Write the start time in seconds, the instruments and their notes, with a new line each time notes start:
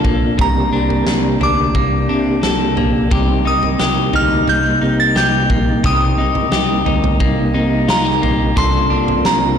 Already playing: clean electric guitar C3 D4 A4, tonewheel organ C3 A#3 D4 F4, synth bell A5
0.04 fretless electric bass A#1, clean electric guitar A#3, kick, floor tom
0.38 fretless electric bass C2, clean electric guitar C3, tonewheel organ G4, synth bell A#5, kick, floor tom
0.72 fretless electric bass C2, clean electric guitar D4
0.90 floor tom
1.07 fretless electric bass C2, snare
1.41 fretless electric bass D2, clean electric guitar D4, synth bell D6, floor tom
1.75 fretless electric bass C2, clean electric guitar A#3, kick, floor tom
2.09 fretless electric bass C3, clean electric guitar D4
2.43 fretless electric bass C2, clean electric guitar A4, snare
2.77 fretless electric bass A#1, clean electric guitar A#3, floor tom
3.11 fretless electric bass C2, clean electric guitar C3 G4, tonewheel organ G3 A#3 D#4, kick, floor tom
3.45 fretless electric bass C2, clean electric guitar D#4, synth bell D#6
3.63 floor tom
3.79 fretless electric bass C2, clean electric guitar G4, snare
4.13 fretless electric bass D2, clean electric guitar D#4, synth bell F6, floor tom
4.47 fretless electric bass C2, clean electric guitar A#3, synth bell G6, floor tom
4.81 fretless electric bass C3, clean electric guitar D#4
5.00 synth bell A6
5.16 fretless electric bass C2, clean electric guitar G4, synth bell G6, snare
5.50 fretless electric bass A#1, clean electric guitar A#3, kick, floor tom
5.84 fretless electric bass C2, clean electric guitar C3 G4, synth bell D#6, kick, floor tom
6.18 fretless electric bass C2, clean electric guitar D#4
6.35 floor tom
6.52 fretless electric bass C2, clean electric guitar G4, snare
6.86 fretless electric bass D2, clean electric guitar D#4, floor tom
7.04 floor tom
7.20 fretless electric bass C2, clean electric guitar A#3, kick, floor tom
7.54 fretless electric bass C3, clean electric guitar D#4
7.88 fretless electric bass C2, clean electric guitar F4, synth bell A#5, snare
8.05 clean electric guitar G4
8.22 fretless electric bass A#1, clean electric guitar A#3, floor tom
8.56 fretless electric bass C2, clean electric guitar C3 A4, tonewheel organ C3 A#3 D4 F4, synth bell C6, kick, floor tom
8.90 fretless electric bass C2, clean electric guitar D4
9.08 floor tom
9.25 fretless electric bass C2, synth bell A#5, snare